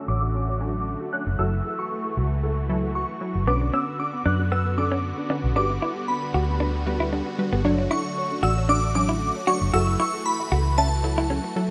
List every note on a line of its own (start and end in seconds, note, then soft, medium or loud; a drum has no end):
0.00 1.35 D3 medium
0.00 3.43 A3 medium
0.00 1.37 F#4 medium
0.08 0.95 A1 medium
0.08 0.16 C#5 medium
0.08 1.09 D6 medium
0.22 0.29 F#4 medium
0.34 0.42 C#4 medium
0.48 0.55 C#5 medium
0.60 0.96 F#3 medium
0.60 0.97 C#4 medium
0.60 0.97 D4 medium
0.60 0.68 F#4 medium
1.00 1.07 F#4 medium
1.13 1.31 F#3 medium
1.13 1.20 C#4 medium
1.13 1.31 D4 medium
1.13 1.31 C#5 medium
1.13 1.37 F#6 medium
1.27 1.37 F#1 medium
1.39 1.60 F#1 loud
1.39 3.46 E3 medium
1.39 2.10 F#3 medium
1.39 2.10 E4 medium
1.39 1.46 F#4 loud
1.39 11.71 F#4 medium
1.39 2.10 A4 medium
1.39 1.80 E6 loud
1.53 1.59 A3 medium
1.65 1.72 A4 medium
1.79 1.85 F#4 medium
1.79 2.94 C#6 medium
1.91 1.98 A3 medium
2.05 2.11 A4 medium
2.17 3.03 C#2 loud
2.17 2.25 F#4 medium
2.31 2.38 A3 medium
2.43 2.51 A4 loud
2.69 3.05 F#3 medium
2.69 2.77 A3 medium
2.69 3.05 E4 medium
2.69 3.05 A4 loud
2.83 2.90 A4 medium
2.95 3.03 F#4 medium
2.95 3.44 C#6 medium
3.09 3.16 A3 medium
3.21 3.39 F#3 medium
3.21 3.40 E4 medium
3.21 3.40 F#4 medium
3.35 3.47 F#1 medium
3.35 3.42 F#4 medium
3.47 3.69 B1 loud
3.47 4.19 D3 medium
3.47 9.70 D3 medium
3.47 7.61 B3 medium
3.47 3.57 B3 medium
3.47 4.19 C#4 medium
3.47 3.55 B4 loud
3.47 4.19 B4 medium
3.47 3.74 D6 loud
3.61 3.68 D4 medium
3.61 muted clean electric guitar stroke soft
3.73 3.81 B3 medium
3.73 3.83 C#4 medium
3.73 3.98 E6 loud
3.87 3.94 B4 medium
3.99 4.07 D4 medium
3.99 4.27 D6 medium
4.13 4.20 B3 medium
4.25 5.12 F#2 loud
4.25 4.35 D4 medium
4.25 4.33 B4 medium
4.25 4.53 F#6 loud
4.39 4.46 D4 medium
4.52 4.59 B3 loud
4.52 4.61 B3 medium
4.52 4.79 E6 loud
4.66 4.72 B4 medium
4.78 5.14 D3 medium
4.78 5.14 C#4 medium
4.78 4.85 D4 medium
4.78 5.14 A4 medium
4.78 5.55 D6 medium
4.78 muted clean electric guitar stroke soft
4.92 5.00 C#4 medium
5.18 5.24 D4 medium
5.30 5.48 D3 medium
5.30 5.37 B3 medium
5.30 5.48 C#4 medium
5.30 5.39 D4 medium
5.30 5.48 B4 medium
5.44 5.56 B1 medium
5.56 5.78 G1 loud
5.56 6.27 G3 medium
5.56 7.63 G3 medium
5.56 5.65 D4 medium
5.56 6.27 F#4 medium
5.56 5.63 G4 loud
5.56 6.28 B4 medium
5.56 6.10 D6 medium
5.70 5.76 B3 medium
5.70 muted clean electric guitar stroke soft
5.82 5.92 E4 medium
5.82 5.90 B4 medium
5.96 6.02 G4 medium
6.08 6.16 B3 medium
6.08 7.35 B5 medium
6.22 6.29 B4 medium
6.34 7.21 D2 loud
6.34 6.44 F#4 medium
6.34 6.42 G4 medium
6.48 6.55 B3 medium
6.60 6.70 D4 medium
6.60 6.68 B4 loud
6.86 7.22 G3 medium
6.86 6.94 B3 medium
6.86 7.23 F#4 medium
6.86 7.23 B4 loud
6.86 muted clean electric guitar stroke soft
7.00 7.09 E4 medium
7.00 7.07 B4 medium
7.13 7.22 D4 medium
7.13 7.20 G4 medium
7.26 7.33 B3 medium
7.26 muted clean electric guitar stroke soft
7.39 7.57 G3 medium
7.39 7.57 F#4 medium
7.39 7.57 B4 medium
7.53 7.65 G1 medium
7.53 7.61 B3 medium
7.53 7.59 G4 medium
7.65 7.86 F#1 loud
7.65 8.36 F#3 loud
7.65 11.71 A3 medium
7.65 7.74 D4 medium
7.65 8.36 D4 medium
7.65 8.36 C#5 loud
7.65 7.72 D5 loud
7.78 7.85 C#5 medium
7.78 muted clean electric guitar stroke soft
7.91 7.98 D4 medium
7.91 8.00 E4 medium
7.91 8.45 C#6 loud
8.05 8.11 D5 medium
8.17 8.25 C#5 medium
8.31 8.37 D4 medium
8.43 9.29 A1 loud
8.43 8.52 F#4 medium
8.43 8.51 D5 medium
8.43 8.70 E6 loud
8.57 8.63 C#5 medium
8.69 8.78 D4 medium
8.69 8.77 D4 loud
8.69 8.94 D6 loud
8.83 8.90 D5 medium
8.95 9.31 F#3 medium
8.95 9.31 C#4 medium
8.95 9.31 D4 medium
8.95 9.03 C#5 medium
8.95 9.49 D6 loud
8.95 muted clean electric guitar stroke soft
9.09 9.17 E4 medium
9.35 9.42 C#5 medium
9.47 9.66 F#3 medium
9.47 9.55 D4 medium
9.47 9.66 D4 medium
9.47 9.57 F#4 medium
9.47 9.66 C#5 medium
9.47 9.74 C#6 loud
9.61 9.71 F#1 medium
9.74 9.95 F#1 loud
9.74 11.71 E3 medium
9.74 10.45 F#3 medium
9.74 10.45 E4 medium
9.74 9.83 F#4 medium
9.74 9.81 A4 loud
9.74 10.45 A4 medium
9.74 10.00 E6 loud
9.87 9.94 E4 medium
9.87 muted clean electric guitar stroke soft
10.00 10.09 E4 medium
10.00 10.07 E5 medium
10.00 10.27 C#6 loud
10.13 10.20 A4 medium
10.26 10.33 E4 medium
10.26 10.79 B5 loud
10.40 10.46 E5 medium
10.52 11.38 C#2 loud
10.52 10.61 F#4 medium
10.52 10.59 A4 medium
10.66 10.72 E4 medium
10.78 10.87 C#4 medium
10.78 10.85 E5 loud
10.78 11.52 A5 medium
11.04 11.40 F#3 medium
11.04 11.40 E4 medium
11.04 11.12 E4 medium
11.04 11.40 A4 medium
11.04 muted clean electric guitar stroke soft
11.18 11.26 E4 medium
11.18 11.24 E5 medium
11.30 11.40 C#4 medium
11.30 11.38 A4 medium
11.44 11.51 E4 medium
11.44 muted clean electric guitar stroke soft
11.56 11.71 F#3 medium
11.56 11.71 E4 medium
11.56 11.71 A4 medium